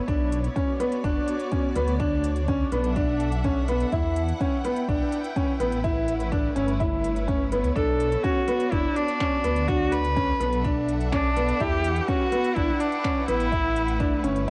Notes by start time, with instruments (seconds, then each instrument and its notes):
Already playing: string section E4 B4 C#5
0.08 detuned saw bass B1, string section B3, grand piano D4, kick, closed hi-hat
0.31 string section D5, closed hi-hat
0.44 closed hi-hat
0.56 grand piano C#4, kick, closed hi-hat
0.65 string section F#4
0.80 grand piano B3, closed hi-hat
0.92 closed hi-hat
1.04 detuned saw bass F#1, grand piano D4, kick, closed hi-hat
1.28 closed hi-hat
1.40 closed hi-hat
1.52 grand piano C#4, kick, closed hi-hat
1.76 detuned saw bass D2, grand piano B3, closed hi-hat
1.88 closed hi-hat
2.00 grand piano D4, string section D4, kick, closed hi-hat
2.24 closed hi-hat
2.36 closed hi-hat
2.48 grand piano C#4, kick, closed hi-hat
2.62 string section A4
2.72 detuned saw bass B1, grand piano B3, closed hi-hat
2.84 string section E5 F#5, closed hi-hat
2.96 grand piano D4, kick, closed hi-hat
3.20 closed hi-hat
3.32 closed hi-hat
3.44 grand piano C#4, kick, closed hi-hat
3.68 grand piano B3, closed hi-hat
3.80 closed hi-hat
3.92 detuned saw bass E2, grand piano E4, kick, closed hi-hat
4.16 closed hi-hat
4.25 string section B4, closed hi-hat
4.40 grand piano C#4, string section G5, kick, closed hi-hat
4.64 grand piano B3, closed hi-hat
4.76 closed hi-hat
4.88 detuned saw bass B1, grand piano D4, kick, closed hi-hat
5.12 closed hi-hat
5.24 closed hi-hat
5.36 grand piano C#4, kick, closed hi-hat
5.60 detuned saw bass A1, grand piano B3, closed hi-hat
5.72 closed hi-hat
5.84 string section A3, grand piano E4, kick, closed hi-hat
6.08 closed hi-hat
6.13 string section C#5
6.20 closed hi-hat
6.32 grand piano D4, kick, closed hi-hat
6.56 detuned saw bass G1, grand piano C#4, closed hi-hat
6.68 closed hi-hat
6.80 grand piano E4, kick, closed hi-hat
7.04 closed hi-hat
7.16 closed hi-hat
7.28 grand piano C#4, kick, closed hi-hat
7.52 grand piano B3, closed hi-hat
7.64 detuned saw bass C#2, closed hi-hat
7.76 detuned saw bass B1, string section B3, grand piano D4, viola A4, kick, closed hi-hat
8.00 closed hi-hat
8.12 closed hi-hat
8.24 grand piano C#4, viola F#4, kick, closed hi-hat
8.45 grand piano B3, string section F#4, closed hi-hat
8.53 string section D5
8.60 closed hi-hat
8.72 detuned saw bass F#1, grand piano D4, viola E4, kick, closed hi-hat
8.96 viola D4, closed hi-hat
9.08 closed hi-hat
9.20 grand piano C#4, finger snap, kick, closed hi-hat
9.44 detuned saw bass D2, grand piano B3, closed hi-hat
9.56 closed hi-hat
9.68 grand piano D4, viola F#4, kick, closed hi-hat
9.92 viola B4, closed hi-hat
10.01 string section A4, closed hi-hat
10.16 grand piano C#4, kick, closed hi-hat
10.40 detuned saw bass B1, grand piano B3, closed hi-hat
10.53 string section E5 F#5, closed hi-hat
10.64 grand piano D4, kick, closed hi-hat
10.88 closed hi-hat
11.01 closed hi-hat
11.12 grand piano C#4, viola D4, finger snap, kick, closed hi-hat
11.36 grand piano B3, closed hi-hat
11.48 closed hi-hat
11.60 detuned saw bass E2, string section E4, grand piano E4, viola G4, kick, closed hi-hat
11.68 string section B4
11.84 closed hi-hat
11.96 closed hi-hat
12.01 viola G4
12.08 grand piano C#4, viola F#4, kick, closed hi-hat
12.32 grand piano B3, closed hi-hat
12.44 string section G5, closed hi-hat
12.55 detuned saw bass B1, grand piano D4, viola E4, kick, closed hi-hat
12.80 viola D4, closed hi-hat
12.92 closed hi-hat
13.04 grand piano C#4, finger snap, kick, closed hi-hat
13.28 detuned saw bass A1, grand piano B3, viola E4, closed hi-hat
13.40 closed hi-hat
13.52 string section A3, grand piano E4, kick, closed hi-hat
13.76 closed hi-hat
13.88 closed hi-hat
14.00 grand piano D4, kick, closed hi-hat
14.24 detuned saw bass G1, grand piano C#4, closed hi-hat
14.36 string section C#5, closed hi-hat